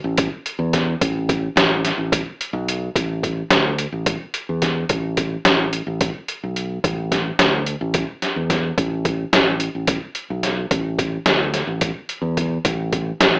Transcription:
0.04 0.27 A1 loud
0.18 kick loud
0.18 closed hi-hat medium
0.46 closed hi-hat medium
0.59 0.94 E2 medium
0.73 kick medium
0.73 snare soft
0.73 closed hi-hat medium
1.01 1.47 A1 loud
1.01 kick medium
1.01 closed hi-hat medium
1.29 kick medium
1.29 closed hi-hat medium
1.56 1.91 A1 medium
1.56 snare loud
1.56 closed hi-hat medium
1.85 snare soft
1.85 closed hi-hat medium
1.98 2.21 A1 medium
2.12 kick loud
2.12 closed hi-hat medium
2.41 closed hi-hat medium
2.53 2.88 B1 medium
2.68 closed hi-hat medium
2.96 3.42 A1 medium
2.96 kick medium
2.96 closed hi-hat medium
3.23 kick medium
3.23 closed hi-hat soft
3.50 3.85 D2 medium
3.50 snare medium
3.50 closed hi-hat medium
3.78 closed hi-hat medium
3.92 4.15 A1 medium
4.06 kick medium
4.06 closed hi-hat medium
4.34 closed hi-hat medium
4.49 4.83 E2 medium
4.62 kick medium
4.62 snare soft
4.62 closed hi-hat medium
4.89 5.36 A1 medium
4.89 kick medium
4.89 closed hi-hat medium
5.17 kick medium
5.17 closed hi-hat medium
5.45 5.80 A1 medium
5.45 snare loud
5.45 closed hi-hat medium
5.73 closed hi-hat medium
5.87 6.10 A1 medium
6.01 kick loud
6.01 closed hi-hat medium
6.28 closed hi-hat medium
6.43 6.77 B1 medium
6.56 closed hi-hat soft
6.84 7.30 A1 medium
6.84 kick loud
6.84 closed hi-hat medium
7.12 kick medium
7.12 snare soft
7.12 closed hi-hat medium
7.39 7.74 D2 medium
7.39 snare medium
7.39 closed hi-hat medium
7.66 closed hi-hat medium
7.81 8.04 A1 medium
7.94 kick medium
7.94 closed hi-hat medium
8.22 snare soft
8.22 closed hi-hat soft
8.36 8.71 E2 medium
8.50 kick medium
8.50 snare soft
8.50 closed hi-hat medium
8.78 9.24 A1 medium
8.78 kick medium
8.78 closed hi-hat medium
9.05 kick medium
9.05 closed hi-hat medium
9.33 9.67 A1 medium
9.33 snare medium
9.33 closed hi-hat medium
9.60 closed hi-hat medium
9.75 9.98 A1 medium
9.87 kick loud
9.87 closed hi-hat medium
10.15 closed hi-hat medium
10.30 10.65 B1 medium
10.43 snare soft
10.43 closed hi-hat medium
10.71 11.17 A1 medium
10.71 kick loud
10.71 closed hi-hat medium
10.99 kick medium
10.99 closed hi-hat medium
11.26 11.61 D2 medium
11.26 snare loud
11.26 closed hi-hat medium
11.54 snare soft
11.54 closed hi-hat medium
11.67 11.91 A1 medium
11.81 kick medium
11.81 closed hi-hat medium
12.09 closed hi-hat medium
12.22 12.57 E2 medium
12.37 kick medium
12.37 closed hi-hat medium
12.65 13.11 A1 medium
12.65 kick medium
12.65 closed hi-hat medium
12.93 kick medium
12.93 closed hi-hat soft
13.20 13.39 A1 medium
13.20 snare medium
13.20 closed hi-hat medium

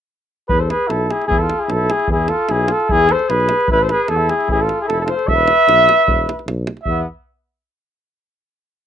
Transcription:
0.49 0.72 E2 medium
0.49 0.60 G#4 medium
0.49 0.61 B4 medium
0.49 davul low medium
0.58 0.72 A4 medium
0.58 0.72 C5 medium
0.70 0.89 G#4 medium
0.70 0.91 B4 medium
0.70 davul high medium
0.87 1.11 B1 medium
0.87 1.08 E4 medium
0.87 1.12 A4 medium
0.87 davul high medium
1.08 1.28 E4 medium
1.08 1.27 G#4 medium
1.08 davul high medium
1.22 davul high soft
1.27 1.50 E2 medium
1.27 1.43 E4 medium
1.27 1.40 G#4 medium
1.27 davul low medium
1.38 1.66 F4 medium
1.38 1.61 A4 medium
1.50 davul high medium
1.59 1.72 G#4 medium
1.64 1.74 E4 medium
1.68 1.91 B1 loud
1.68 1.92 A4 medium
1.68 davul high medium
1.74 1.94 E4 medium
1.90 2.10 G#4 medium
1.90 davul high medium
1.94 2.10 E4 medium
2.00 davul high soft
2.08 2.30 E2 medium
2.08 2.31 E4 medium
2.08 2.30 G#4 medium
2.08 davul low medium
2.28 2.51 F4 medium
2.28 2.52 A4 medium
2.28 davul high medium
2.49 2.71 B1 medium
2.49 2.69 E4 medium
2.49 2.73 G#4 medium
2.49 davul high medium
2.67 2.90 F4 medium
2.67 davul high medium
2.72 2.93 A4 medium
2.80 davul high soft
2.89 3.12 E2 medium
2.89 3.09 E4 medium
2.89 3.13 G#4 loud
2.89 davul low medium
3.08 3.30 A4 medium
3.08 davul high medium
3.12 3.31 C5 medium
3.19 davul high soft
3.28 3.51 B1 medium
3.28 3.68 G#4 medium
3.28 3.69 B4 medium
3.28 davul high medium
3.40 davul high soft
3.49 davul high medium
3.61 davul high soft
3.68 3.91 A1 medium
3.68 3.81 E4 medium
3.68 davul low medium
3.72 3.84 B4 medium
3.80 3.94 A4 medium
3.80 3.91 C5 medium
3.89 4.08 G#4 medium
3.89 4.03 B4 medium
3.89 davul high medium
4.03 4.10 B4 medium
4.08 4.30 E2 medium
4.08 4.18 G#4 medium
4.08 4.31 A4 medium
4.08 davul high medium
4.17 4.36 E4 medium
4.29 4.48 G#4 medium
4.29 davul high medium
4.36 4.52 E4 medium
4.41 davul high soft
4.48 4.70 A1 medium
4.48 4.63 G#4 medium
4.48 davul low medium
4.53 4.64 E4 medium
4.61 4.80 F4 medium
4.61 4.79 A4 medium
4.69 davul high soft
4.81 4.90 E4 medium
4.81 4.87 G#4 medium
4.88 5.10 F1 medium
4.88 5.01 A4 medium
4.88 davul high medium
4.92 5.05 E4 medium
5.01 5.11 F4 soft
5.01 5.06 A4 medium
5.06 5.08 A4 medium
5.06 5.29 C5 medium
5.06 davul high medium
5.11 5.13 F4 medium
5.15 5.36 A4 medium
5.15 davul high soft
5.27 5.49 E1 medium
5.27 6.46 E5 loud
5.27 davul low medium
5.35 6.49 B4 medium
5.48 davul high medium
5.68 5.89 B1 medium
5.68 davul high medium
5.89 davul high medium
5.99 davul high soft
6.07 6.28 E1 medium
6.07 davul low medium
6.29 davul high medium
6.39 davul high soft
6.46 6.68 B1 medium
6.46 davul high medium
6.67 davul high medium
6.77 davul high soft
6.83 7.04 E2 medium
6.83 7.02 E5 medium
6.83 davul low medium
6.89 7.05 B3 medium

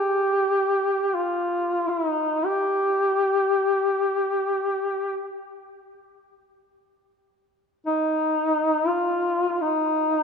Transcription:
0.00 1.16 G4 medium
1.15 1.90 F4 medium
1.89 2.08 E4 medium
2.08 2.47 D#4 medium
2.45 5.36 G4 medium
7.86 8.89 D#4 medium
8.87 9.51 F4 medium
9.51 9.63 F4 medium
9.61 10.23 D#4 medium

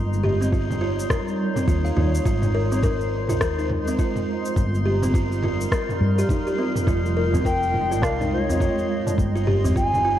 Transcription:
0.00 1.05 G1 medium
0.00 2.23 G3 medium
0.00 2.23 D#4 medium
0.00 10.19 D#4 medium
0.00 2.23 C#5 medium
0.00 10.19 C6 medium
0.13 cabasa soft
0.23 0.40 G4 medium
0.23 mid tom medium
0.41 0.51 C4 medium
0.41 cabasa medium
0.52 0.80 F4 medium
0.52 kick loud
0.52 cabasa medium
0.71 mid tom medium
0.71 cabasa soft
0.81 0.98 F4 medium
0.99 cabasa medium
1.10 1.55 A#4 medium
1.10 kick loud
1.10 cross-stick medium
1.10 mid tom medium
1.10 cabasa medium
1.28 cabasa soft
1.56 1.67 C4 medium
1.56 mid tom medium
1.56 cabasa medium
1.68 1.90 D#2 medium
1.68 1.84 F4 medium
1.68 kick loud
1.68 cabasa medium
1.85 1.96 F5 medium
1.85 cabasa soft
1.97 2.19 D#2 medium
1.97 2.13 F4 medium
1.97 mid tom medium
2.15 cabasa medium
2.25 3.41 G#1 medium
2.25 4.55 G#3 medium
2.25 2.36 F4 medium
2.25 9.14 F4 medium
2.25 4.54 C5 medium
2.25 kick loud
2.25 cabasa medium
2.42 mid tom medium
2.42 cabasa soft
2.55 2.71 A#4 medium
2.72 2.82 C4 medium
2.72 cabasa medium
2.83 3.00 A#4 loud
2.83 kick loud
2.83 mid tom medium
2.83 cabasa medium
3.01 cabasa soft
3.29 3.41 F4 medium
3.29 mid tom medium
3.29 cabasa medium
3.41 3.93 D#2 medium
3.41 3.57 A#4 loud
3.41 kick loud
3.41 cross-stick medium
3.41 cabasa medium
3.59 3.65 D#4 medium
3.59 cabasa soft
3.70 mid tom medium
3.87 3.98 C4 medium
3.87 cabasa medium
3.99 4.16 F4 medium
3.99 kick loud
3.99 cabasa medium
4.16 mid tom medium
4.16 cabasa soft
4.45 cabasa medium
4.56 5.66 G1 medium
4.56 6.85 G3 medium
4.56 6.85 A#4 medium
4.56 kick loud
4.56 mid tom medium
4.56 cabasa medium
4.75 cabasa soft
4.86 5.02 G4 medium
5.02 5.13 C4 medium
5.02 mid tom medium
5.02 cabasa medium
5.14 5.42 F4 medium
5.14 kick loud
5.14 cabasa medium
5.32 cabasa soft
5.42 5.60 F4 medium
5.42 mid tom medium
5.61 cabasa medium
5.72 5.88 A#4 medium
5.72 kick loud
5.72 cross-stick medium
5.72 cabasa medium
5.89 mid tom medium
5.89 cabasa soft
6.01 6.23 G2 medium
6.19 6.29 G4 medium
6.19 cabasa medium
6.29 6.46 D#4 medium
6.29 kick loud
6.29 mid tom medium
6.29 cabasa medium
6.47 6.57 G4 medium
6.47 cabasa soft
6.59 6.75 C4 medium
6.76 mid tom medium
6.76 cabasa medium
6.87 8.03 F1 medium
6.87 9.16 G#3 medium
6.87 6.97 F4 loud
6.87 9.16 D#5 medium
6.87 kick medium
6.87 mid tom medium
6.87 cabasa medium
7.06 cabasa soft
7.17 7.33 A#4 medium
7.33 7.44 C4 medium
7.33 mid tom medium
7.33 tabla na soft
7.33 tabla ge medium
7.33 cabasa medium
7.45 7.62 A#4 medium
7.45 8.04 G5 loud
7.45 kick loud
7.45 cabasa medium
7.63 cabasa soft
7.74 mid tom medium
7.91 8.02 F4 medium
7.91 tabla tin soft
7.91 cabasa medium
8.02 8.55 C2 medium
8.02 8.18 A#4 loud
8.02 8.32 F5 loud
8.02 kick loud
8.02 cross-stick medium
8.02 tabla na medium
8.02 cabasa medium
8.21 8.27 D#4 medium
8.21 mid tom medium
8.21 tabla tin medium
8.21 cabasa soft
8.32 9.15 C#5 medium
8.49 8.60 C4 medium
8.49 tabla ge medium
8.49 cabasa medium
8.60 8.77 F4 medium
8.60 kick loud
8.60 mid tom medium
8.60 cabasa soft
8.79 cabasa soft
9.07 mid tom medium
9.07 tabla na soft
9.07 tabla tin medium
9.07 cabasa medium
9.18 10.19 G1 medium
9.18 10.19 G3 medium
9.18 10.19 D#4 medium
9.18 10.19 C#5 medium
9.18 kick medium
9.18 cabasa medium
9.35 9.46 F4 medium
9.35 cabasa soft
9.47 9.63 G4 medium
9.47 mid tom medium
9.64 9.75 C4 medium
9.64 tabla ge medium
9.64 cabasa medium
9.76 10.04 F4 medium
9.76 10.19 G#5 loud
9.76 kick loud
9.76 cabasa soft
9.94 mid tom medium
9.94 cabasa soft
10.05 10.19 F4 medium

